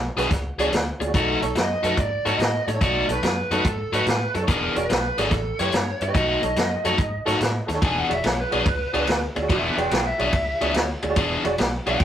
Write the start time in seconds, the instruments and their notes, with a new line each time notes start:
0.16 fingered electric bass B1, overdriven electric guitar E3 B3 D4 G#4, honky-tonk piano F#4 G#4 B4, snare, closed hi-hat
0.30 fingered electric bass C#2, muted overdriven electric guitar stroke, kick, snare, closed hi-hat
0.58 fingered electric bass C#2, overdriven electric guitar E3 B3 D4 G#4, honky-tonk piano F#4 G#4 D5, closed hi-hat
0.71 fingered electric bass D2, muted overdriven electric guitar stroke, snare, closed hi-hat
1.00 fingered electric bass D2, honky-tonk piano G#4 D5, muted overdriven electric guitar stroke, closed hi-hat
1.06 honky-tonk piano F#4 G#4 D5
1.14 fingered electric bass B1, overdriven electric guitar B2 A3 D#4 F#4, lead electric guitar A4, kick, closed hi-hat
1.41 fingered electric bass B1, honky-tonk piano D#4 A4 C#5, muted overdriven electric guitar stroke, closed hi-hat
1.55 fingered electric bass F#2, lead electric guitar D#5, muted overdriven electric guitar stroke, snare, closed hi-hat
1.83 fingered electric bass F#2, overdriven electric guitar B2 A3 D#4 F#4, honky-tonk piano D#4 A4 B4, closed hi-hat
1.97 fingered electric bass G#2, lead electric guitar D5, muted overdriven electric guitar stroke, kick, closed hi-hat
2.25 fingered electric bass G#2, overdriven electric guitar B2 A3 D#4 F#4, honky-tonk piano D#4 A4 C#5, lead electric guitar D#5, closed hi-hat
2.39 fingered electric bass A2, muted overdriven electric guitar stroke, snare, closed hi-hat
2.67 fingered electric bass A2, honky-tonk piano A4 C#5, lead electric guitar C#5, muted overdriven electric guitar stroke, closed hi-hat
2.75 honky-tonk piano D#4 A4 C#5
2.81 fingered electric bass B1, overdriven electric guitar B2 A3 D#4 F#4, lead electric guitar D5, kick, closed hi-hat
3.09 fingered electric bass B1, honky-tonk piano D#4 A4 C#5, lead electric guitar B4, muted overdriven electric guitar stroke, closed hi-hat
3.22 fingered electric bass F#2, muted overdriven electric guitar stroke, snare, closed hi-hat
3.50 fingered electric bass F#2, overdriven electric guitar B2 A3 D#4 F#4, honky-tonk piano D#4 A4 C#5, lead electric guitar B4, closed hi-hat
3.64 fingered electric bass G#2, lead electric guitar A4, muted overdriven electric guitar stroke, kick, closed hi-hat
3.92 fingered electric bass G#2, overdriven electric guitar B2 A3 D#4 F#4, honky-tonk piano D#4 A4 C#5, lead electric guitar B4, closed hi-hat
4.06 fingered electric bass A2, muted overdriven electric guitar stroke, snare, closed hi-hat
4.34 fingered electric bass F#2, honky-tonk piano A4 C#5, lead electric guitar A4, muted overdriven electric guitar stroke, closed hi-hat
4.42 honky-tonk piano D#4 A4 C#5
4.47 fingered electric bass E1, overdriven electric guitar E3 B3 D4 G#4, lead electric guitar A#4, kick, closed hi-hat
4.76 fingered electric bass E1, honky-tonk piano F#4 G#4 D5, lead electric guitar B4, muted overdriven electric guitar stroke, closed hi-hat
4.90 fingered electric bass B1, muted overdriven electric guitar stroke, snare, closed hi-hat
5.18 fingered electric bass G#1, overdriven electric guitar E3 B3 D4 G#4, honky-tonk piano F#4 G#4 D5, lead electric guitar A4, snare, closed hi-hat
5.31 fingered electric bass A1, muted overdriven electric guitar stroke, kick, snare, closed hi-hat
5.59 fingered electric bass F#2, overdriven electric guitar A3 E4 G4 C#5, honky-tonk piano G4 B4 C#5, lead electric guitar C#5, closed hi-hat
5.72 fingered electric bass G2, muted overdriven electric guitar stroke, snare, closed hi-hat
6.00 fingered electric bass G2, honky-tonk piano B4 E5, lead electric guitar D#5, muted overdriven electric guitar stroke, closed hi-hat
6.08 honky-tonk piano G4 B4 C#5
6.14 fingered electric bass B1, overdriven electric guitar B2 A3 D#4 F#4, kick, closed hi-hat
6.43 fingered electric bass B1, honky-tonk piano D#4 A4 C#5, muted overdriven electric guitar stroke, closed hi-hat
6.56 fingered electric bass F#2, muted overdriven electric guitar stroke, snare, closed hi-hat
6.84 fingered electric bass F#2, overdriven electric guitar B2 A3 D#4 F#4, honky-tonk piano D#4 A4 C#5, closed hi-hat
6.98 fingered electric bass G#2, muted overdriven electric guitar stroke, kick, closed hi-hat
7.25 fingered electric bass G#2, overdriven electric guitar B2 A3 D#4 F#4, honky-tonk piano D#4 A4 C#5, snare, closed hi-hat
7.40 fingered electric bass A2, muted overdriven electric guitar stroke, snare, closed hi-hat
7.67 fingered electric bass D#2, honky-tonk piano A4 C#5, muted overdriven electric guitar stroke, closed hi-hat
7.71 honky-tonk piano D#4 A4, snare
7.75 honky-tonk piano C#5
7.82 fingered electric bass E1, overdriven electric guitar E3 B3 D4 G#4, lead electric guitar G#5, kick, ride
7.98 lead electric guitar F#5
8.08 fingered electric bass E1, honky-tonk piano F#4 G#4 D5, muted overdriven electric guitar stroke, ride
8.13 lead electric guitar E5
8.24 fingered electric bass B1, lead electric guitar C#5, muted overdriven electric guitar stroke, snare, ride
8.40 lead electric guitar B4
8.51 fingered electric bass B1, overdriven electric guitar E3 B3 D4 G#4, honky-tonk piano F#4 G#4 D5, ride
8.66 fingered electric bass C#2, muted overdriven electric guitar stroke, kick, ride
8.93 fingered electric bass C#2, overdriven electric guitar E3 B3 D4 G#4, honky-tonk piano F#4 G#4 D5, ride
9.07 fingered electric bass D2, muted overdriven electric guitar stroke, snare, ride
9.35 fingered electric bass D2, honky-tonk piano G#4 D5, muted overdriven electric guitar stroke, ride
9.42 honky-tonk piano F#4 G#4 D5
9.49 fingered electric bass E1, overdriven electric guitar E3 B3 D4 G#4, lead electric guitar G#4 E5, kick, ride
9.64 lead electric guitar G#4 E5
9.77 fingered electric bass E1, honky-tonk piano F#4 G#4 D5, lead electric guitar B4 G5, muted overdriven electric guitar stroke, ride
9.91 fingered electric bass B1, lead electric guitar B4 G5, muted overdriven electric guitar stroke, snare, ride
10.06 lead electric guitar E5
10.18 fingered electric bass B1, overdriven electric guitar E3 B3 D4 G#4, honky-tonk piano F#4 G#4 D5, ride
10.33 fingered electric bass C#2, muted overdriven electric guitar stroke, kick, ride
10.61 fingered electric bass C#2, overdriven electric guitar E3 B3 D4 G#4, honky-tonk piano F#4 G#4 D5, ride
10.74 fingered electric bass D2, muted overdriven electric guitar stroke, snare, ride
11.02 fingered electric bass D2, honky-tonk piano G#4 D5, muted overdriven electric guitar stroke, ride
11.09 honky-tonk piano F#4 G#4 D5
11.16 fingered electric bass E1, overdriven electric guitar E3 B3 D4 G#4, kick, ride
11.44 fingered electric bass E1, honky-tonk piano F#4 G#4 D5, muted overdriven electric guitar stroke, ride
11.58 fingered electric bass B1, muted overdriven electric guitar stroke, snare, ride
11.86 fingered electric bass B1, overdriven electric guitar E3 B3 D4 G#4, honky-tonk piano F#4 G#4 D5, lead electric guitar G5, ride
12.00 fingered electric bass C#2, muted overdriven electric guitar stroke, kick, ride